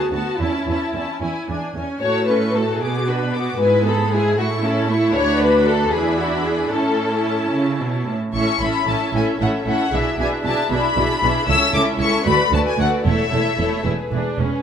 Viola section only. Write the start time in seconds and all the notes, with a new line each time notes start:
Already playing: B3 F#4
0.13 B3 F#4
0.41 C#4 E4
0.68 C#4 E4
0.95 C#4 E4
1.22 E4
1.49 D4
1.77 C#4
2.02 A3 F#4
2.28 C#4 A4
2.56 A3 F#4
2.83 B3 F#4
3.08 D4 B4
3.35 B3 F#4
3.61 G#3 E4
3.87 B3 G#4
4.13 G#3 E4
4.38 A3 E4
4.63 C#4 A4
4.89 A3 E4
5.14 D4 F#4
5.92 D4 E4
6.72 C#4 E4
8.36 C#4 E4
8.62 C#4 E4
8.88 C#4 E4
9.13 C#4 E4
9.40 C#4 E4
9.66 C#4 E4
9.93 D4 E4
10.18 D4 E4
10.44 D4 E4
10.71 D4 E4
10.96 D4 E4
11.23 D4 E4
11.48 C#4 E4
11.74 C#4 E4
12.00 C#4 E4
12.25 A3 F#4
12.51 A3 F#4
12.78 A3 F#4
13.04 A3 E4
13.31 A3 E4
13.58 A3 E4
13.85 E4
14.12 D4
14.39 C#4